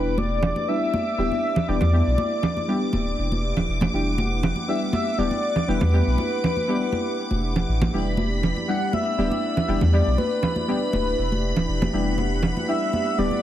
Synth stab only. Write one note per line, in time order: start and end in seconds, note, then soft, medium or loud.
0.00 0.15 G3 medium
0.00 0.15 B3 medium
0.00 0.15 D4 medium
0.00 0.15 E4 medium
0.00 0.15 G4 medium
0.68 1.15 G3 medium
0.68 1.15 B3 medium
0.68 1.15 D4 medium
0.68 1.15 E4 medium
0.68 1.16 G4 medium
1.18 1.32 G3 medium
1.18 1.32 B3 medium
1.18 1.32 D4 medium
1.18 1.33 E4 medium
1.18 1.33 G4 loud
1.68 1.82 G3 medium
1.68 1.82 B3 medium
1.68 1.82 D4 medium
1.68 1.83 E4 medium
1.68 1.83 G4 loud
1.93 2.15 G3 medium
1.93 2.15 B3 medium
1.93 2.15 D4 medium
1.93 2.15 E4 medium
1.93 2.15 G4 loud
2.68 2.82 G3 medium
2.68 2.82 B3 medium
2.68 2.82 D4 medium
2.68 2.83 E4 medium
2.68 2.83 G4 loud
3.93 4.15 G3 medium
3.93 4.15 B3 medium
3.93 4.15 D4 medium
3.93 4.15 E4 medium
3.93 4.15 G4 medium
4.68 5.15 G3 medium
4.68 5.15 B3 medium
4.68 5.15 D4 medium
4.68 5.15 E4 medium
4.68 5.16 G4 medium
5.18 5.32 G3 medium
5.18 5.32 B3 medium
5.18 5.32 D4 medium
5.18 5.33 E4 medium
5.18 5.33 G4 loud
5.68 5.82 G3 loud
5.68 5.82 B3 medium
5.68 5.82 D4 medium
5.68 5.83 E4 medium
5.68 5.83 G4 loud
5.93 6.15 G3 medium
5.93 6.15 B3 medium
5.93 6.15 D4 medium
5.93 6.15 E4 medium
5.93 6.15 G4 loud
6.68 6.82 G3 medium
6.68 6.82 B3 medium
6.68 6.82 D4 medium
6.68 6.83 E4 medium
6.68 6.83 G4 medium
7.93 8.15 G3 medium
7.93 8.15 B3 medium
7.93 8.15 D4 medium
7.93 8.15 E4 medium
7.93 8.15 G4 medium
8.68 9.15 G3 medium
8.68 9.15 B3 medium
8.68 9.15 D4 medium
8.68 9.15 E4 medium
8.68 9.16 G4 medium
9.18 9.32 G3 medium
9.18 9.32 B3 medium
9.18 9.32 D4 medium
9.18 9.33 E4 medium
9.18 9.33 G4 loud
9.68 9.82 G3 loud
9.68 9.82 B3 medium
9.68 9.82 D4 medium
9.68 9.83 E4 medium
9.68 9.83 G4 loud
9.93 10.15 G3 medium
9.93 10.15 B3 medium
9.93 10.15 D4 medium
9.93 10.15 E4 medium
9.93 10.15 G4 loud
10.68 10.82 G3 medium
10.68 10.82 B3 medium
10.68 10.82 D4 medium
10.68 10.83 E4 medium
10.68 10.83 G4 loud
11.93 12.15 G3 medium
11.93 12.15 B3 medium
11.93 12.15 D4 medium
11.93 12.15 E4 medium
11.93 12.15 G4 medium
12.68 13.15 G3 medium
12.68 13.15 B3 medium
12.68 13.15 D4 medium
12.68 13.15 E4 medium
12.68 13.16 G4 medium
13.18 13.32 G3 medium
13.18 13.32 B3 medium
13.18 13.32 D4 medium
13.18 13.33 E4 medium
13.18 13.33 G4 loud